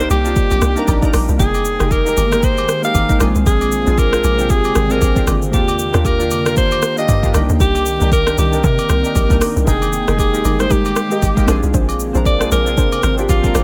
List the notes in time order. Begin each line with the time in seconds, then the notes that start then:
Already playing: G3 A#3 C4 G4 C5 G5
0.00 D4 D#4 G4
0.10 C2 G4, high agogo, shaker
0.24 A#3 D4 D#4 F4, shaker
0.36 kick, shaker
0.51 A#1, high agogo, shaker
0.61 C2, cross-stick, shaker
0.75 A#3 D4 D#4 A#4, shaker
0.88 A#1, kick, high agogo, low woodblock, shaker
1.01 A#3 D4 D#4 A#4, kick, shaker
1.13 A#1, cross-stick, open hi-hat, high agogo, shaker
1.28 C2, shaker
1.38 F1 D#3 G#3 A#3 D#4 G#4 G5, kick, shaker
1.54 high agogo, shaker
1.65 shaker
1.79 F1 A#3 D#4 G4 G#4, cross-stick, shaker
1.91 A#4, kick, high agogo, shaker
2.05 A#3 D#4 G4 A#4, shaker
2.17 G1, high agogo, shaker
2.31 A#3 D#4 G4 G#4, cross-stick, shaker
2.40 A#4 C5, kick, shaker
2.57 high agogo, shaker
2.68 cross-stick, shaker
2.82 A#3 D#4 G4 A#4 F5, shaker
2.95 G#1, kick, high agogo, shaker
3.08 A#3 D#4 G4 A#4, kick, shaker
3.19 A#1 C3 D3 C4 D4 F4 G#4, cross-stick, high agogo, shaker
3.35 C2, shaker
3.46 A#1 G#4, kick, shaker
3.61 high agogo, shaker
3.72 shaker
3.86 A#1 C4 D4 F4 G#4, shaker
3.98 A#4, kick, high agogo, shaker
4.12 C4 D4 F4 G#4, cross-stick, shaker
4.24 A#1, high agogo, shaker
4.37 C4 D4 F4 G4, shaker
4.49 G#4, kick, shaker
4.64 high agogo, shaker
4.75 G#1, cross-stick, shaker
4.89 C4 D4 F4 G#4 A#4, shaker
5.01 A#1, kick, high agogo, shaker
5.15 C4 D4 F4 G4, kick, shaker
5.27 G#1, cross-stick, high agogo, shaker
5.42 shaker
5.52 D#2 D#3 A#3 D4 F4 G4 G5, kick, shaker
5.68 high agogo, shaker
5.79 shaker
5.93 D#2 A#3 D4 F4 G4, cross-stick, shaker
6.05 A#4, kick, high agogo, shaker
6.18 A#3 D4 F4 G4, shaker
6.31 F2, high agogo, shaker
6.45 A#3 D4 F4 A#4, cross-stick, shaker
6.57 C5, kick, shaker
6.71 high agogo, shaker
6.82 cross-stick, shaker
6.96 A#3 D4 F4 G4 D#5, shaker
7.08 G2, kick, high agogo, shaker
7.22 A#3 D4 F4 G4, kick, shaker
7.33 C2 A#3 C4 D4 D#4 G4, cross-stick, high agogo, shaker
7.49 D#2, shaker
7.60 C2 G4, kick, shaker
7.75 high agogo, shaker
7.86 shaker
7.99 C2 A#3 D4 D#4 G4, shaker
8.12 A#4, kick, high agogo, shaker
8.25 A#3 D4 D#4 G4, cross-stick, shaker
8.38 C2 G4, high agogo, shaker
8.51 A#3 D4 D#4 A#4, shaker
8.64 C3 A#4, kick, shaker
8.78 high agogo, shaker
8.89 C2, cross-stick, shaker
9.03 A#3 D4 D#4 G4, shaker
9.15 A#1, kick, high agogo, shaker
9.29 C2 A#3 D4 D#4 A#4, kick, shaker
9.41 cross-stick, open hi-hat, high agogo, shaker
9.56 C2, shaker
9.65 F1 G#3 A#3 D#4 G#4 A#4 G5, kick, shaker
9.82 high agogo, shaker
9.93 shaker
10.06 F1 G#3 A#3 D#4 G4 G#4 A#4, cross-stick, shaker
10.19 G#4, kick, high agogo, shaker
10.32 G#3 A#3 D#4 G4, shaker
10.44 G1 D#4 G4 G#4 A#4, high agogo, shaker
10.58 G3 A#3 D#4 G4 C5, cross-stick, shaker
10.64 G#3
10.70 G#3 D#4 G4 A#4, kick, shaker
10.85 high agogo, shaker
10.96 cross-stick, shaker
11.10 G#3 A#3 D#4 G4 G#4 A#4, shaker
11.22 G#1, kick, high agogo, shaker
11.35 G#3 A#3 D#4 G4, kick, shaker
11.46 A#1 C3 C4 D4 F4 G#4 C5, cross-stick, high agogo, shaker
11.63 C2, shaker
11.74 A#1 D4 G#4 C5, kick, shaker
11.89 high agogo, shaker
12.00 shaker
12.13 A#1 C4 D4 F4 G#4 A#4 C5, shaker
12.25 D5, kick, high agogo, shaker
12.39 C4 D4 F4 G#4, cross-stick, shaker
12.51 A#1 D4 G#4 A#4 C5, high agogo, shaker
12.65 C4 D4 F4 G#4, shaker
12.77 D4 G#4 C5, kick, shaker
12.92 high agogo, shaker
13.03 G#1 A#4, cross-stick, shaker
13.16 C4 D4 F4 G4 G#4 C5, shaker
13.29 A#1 F4, kick, high agogo, shaker
13.42 C4 D4 F4 A#4, kick, shaker
13.55 G#1 D4 G#4 C5, cross-stick, high agogo, shaker